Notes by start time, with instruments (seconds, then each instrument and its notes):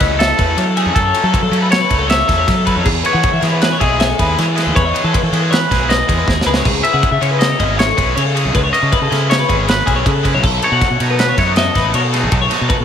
Already playing: clean electric guitar E3 B4
0.00 fingered electric bass C#2, overdriven electric guitar F#3 A3 C#4 A4, clean electric guitar D#5, kick, snare, ride
0.19 clean electric guitar A4 E5, snare, ride
0.29 clean electric guitar A4
0.38 fingered electric bass E2, overdriven electric guitar F#3 A3 C#4 A4, clean electric guitar B4, kick, ride
0.57 fingered electric bass F#3, clean electric guitar C#5, ride
0.67 clean electric guitar A4
0.76 overdriven electric guitar F#3 A3 C#4 A4, clean electric guitar G#4, ride
0.86 fingered electric bass F#2
0.95 fingered electric bass F#2, clean electric guitar A4, kick, ride
1.05 clean electric guitar C#5
1.14 overdriven electric guitar F#3 A3 C#4 A4, ride
1.23 fingered electric bass F#3, clean electric guitar A4
1.33 clean electric guitar B4, kick, ride
1.42 fingered electric bass F#3, clean electric guitar A4
1.51 fingered electric bass F#3, overdriven electric guitar F#3 A3 C#4 A4, ride
1.62 clean electric guitar B4
1.71 clean electric guitar C#5, snare, ride
1.81 clean electric guitar B4
1.89 fingered electric bass C#2, overdriven electric guitar F#3 A3 C#4 A4, kick, ride
1.99 clean electric guitar A4
2.08 clean electric guitar C#5 E5, snare, ride
2.27 fingered electric bass E2, overdriven electric guitar F#3 A3 C#4 A4, clean electric guitar A4, kick, snare, ride
2.38 clean electric guitar C#5
2.47 fingered electric bass F#3, clean electric guitar A4, kick, snare, ride
2.66 overdriven electric guitar F#3 A3 C#4 A4, clean electric guitar B4, kick, ride
2.76 fingered electric bass F#2, clean electric guitar C#5
2.85 fingered electric bass E2, clean electric guitar G#4, kick, crash
3.03 overdriven electric guitar G#3 B3 E4 G#4, clean electric guitar B4 C#5, ride
3.13 fingered electric bass E3, clean electric guitar F#5
3.23 kick, ride
3.33 fingered electric bass E3, clean electric guitar E5
3.41 fingered electric bass E3, overdriven electric guitar G#3 B3 E4 G#4, clean electric guitar C#5, snare, ride
3.53 clean electric guitar B4
3.62 clean electric guitar B4, snare, ride
3.72 clean electric guitar C#5
3.80 fingered electric bass B1, overdriven electric guitar G#3 B3 E4 G#4, clean electric guitar G#4 D#5, kick, ride
4.00 clean electric guitar E5, snare, ride
4.10 clean electric guitar A4
4.19 fingered electric bass D#2, overdriven electric guitar G#3 B3 E4 G#4, clean electric guitar B4, kick, ride
4.38 fingered electric bass E3, clean electric guitar C#5, snare, ride
4.48 clean electric guitar B4
4.55 overdriven electric guitar G#3 B3 E4 G#4, clean electric guitar A4, snare, ride
4.66 fingered electric bass E2
4.75 fingered electric bass E2, clean electric guitar B4 C#5, kick, ride
4.85 clean electric guitar D#5
4.94 overdriven electric guitar G#3 B3 E4 G#4, ride
5.04 fingered electric bass E3, clean electric guitar A4
5.14 clean electric guitar B4, kick, ride
5.23 fingered electric bass E3, clean electric guitar A4
5.32 fingered electric bass E3, overdriven electric guitar G#3 B3 E4 G#4, ride
5.42 clean electric guitar B4
5.51 clean electric guitar B4 C#5, snare, ride
5.60 clean electric guitar B4
5.71 fingered electric bass B1, overdriven electric guitar G#3 B3 E4 G#4, kick, snare, ride
5.80 clean electric guitar G#4
5.89 clean electric guitar B4 D#5, snare, ride
6.08 fingered electric bass E2, overdriven electric guitar G#3 B3 E4 G#4, clean electric guitar G#4, kick, ride
6.18 clean electric guitar B4
6.28 fingered electric bass D#2, clean electric guitar G#4, kick, snare
6.41 snare
6.46 fingered electric bass C#2, overdriven electric guitar G#3 B3 E4 G#4, clean electric guitar B4
6.54 clean electric guitar C#5, snare
6.65 fingered electric bass C#2, clean electric guitar G#4, kick, crash, splash
6.83 overdriven electric guitar G#3 C#4 E4 G#4, clean electric guitar B4 E5, ride
6.93 fingered electric bass C#3, clean electric guitar F#5
7.03 kick, ride
7.12 fingered electric bass C#3, clean electric guitar E5
7.21 fingered electric bass C#3, overdriven electric guitar G#3 C#4 E4 G#4, clean electric guitar C#5, ride
7.31 clean electric guitar B4
7.39 clean electric guitar D#5, snare, ride
7.50 clean electric guitar C#5
7.59 fingered electric bass G#1, overdriven electric guitar G#3 C#4 E4 G#4, clean electric guitar D#5, kick, ride
7.77 clean electric guitar C#5 E5, snare, ride
7.87 clean electric guitar A4
7.97 fingered electric bass B1, overdriven electric guitar G#3 C#4 E4 G#4, clean electric guitar B4, kick, ride
8.15 fingered electric bass C#3, clean electric guitar C#5, ride
8.25 clean electric guitar A4
8.35 overdriven electric guitar G#3 C#4 E4 G#4, clean electric guitar G#4, ride
8.45 fingered electric bass C#2
8.55 fingered electric bass C#2, clean electric guitar B4, kick, ride
8.64 clean electric guitar C#5
8.73 overdriven electric guitar G#3 C#4 E4 G#4, clean electric guitar D#5, ride
8.82 fingered electric bass C#3, clean electric guitar A4
8.92 clean electric guitar B4, kick, ride
9.01 fingered electric bass C#3, clean electric guitar A4
9.11 fingered electric bass C#3, overdriven electric guitar G#3 C#4 E4 G#4, snare, ride
9.20 clean electric guitar B4
9.30 clean electric guitar C#5, snare, ride
9.39 clean electric guitar B4
9.49 fingered electric bass G#1, overdriven electric guitar G#3 C#4 E4 G#4, kick, ride
9.58 clean electric guitar G#4
9.68 clean electric guitar B4, snare, ride
9.86 fingered electric bass B1, overdriven electric guitar G#3 C#4 E4 G#4, clean electric guitar G#4, kick, ride
9.96 clean electric guitar C#5
10.06 fingered electric bass C#3, clean electric guitar A4, kick, ride
10.23 overdriven electric guitar G#3 C#4 E4 G#4, clean electric guitar B4, kick, ride
10.34 fingered electric bass C#2, clean electric guitar C#5
10.43 fingered electric bass B1, clean electric guitar A4, kick, crash
10.62 overdriven electric guitar F#3 B3 D#4 A4, clean electric guitar B4 C#5, ride
10.72 fingered electric bass B2, clean electric guitar F#5
10.81 kick, snare, ride
10.91 fingered electric bass B2, clean electric guitar E5
11.00 fingered electric bass B2, overdriven electric guitar F#3 B3 D#4 A4, clean electric guitar C#5, ride
11.10 clean electric guitar B4
11.19 clean electric guitar B4, snare, ride
11.29 clean electric guitar C#5
11.38 fingered electric bass F#2, overdriven electric guitar F#3 B3 D#4 A4, clean electric guitar C#5 D#5, kick, snare, ride
11.56 clean electric guitar D#5 E5, snare, ride
11.67 clean electric guitar A4
11.75 fingered electric bass A1, overdriven electric guitar F#3 B3 D#4 A4, clean electric guitar B4, kick, snare, ride
11.94 fingered electric bass B2, clean electric guitar C#5, ride
12.04 clean electric guitar A4
12.13 overdriven electric guitar F#3 B3 D#4 A4, clean electric guitar G#4, snare, ride
12.23 fingered electric bass B1
12.32 fingered electric bass B1, clean electric guitar A4, kick, ride
12.41 clean electric guitar C#5
12.50 overdriven electric guitar F#3 B3 D#4 A4, snare, ride
12.60 fingered electric bass B2, clean electric guitar A4
12.69 clean electric guitar B4, kick, ride
12.78 fingered electric bass B2, clean electric guitar A4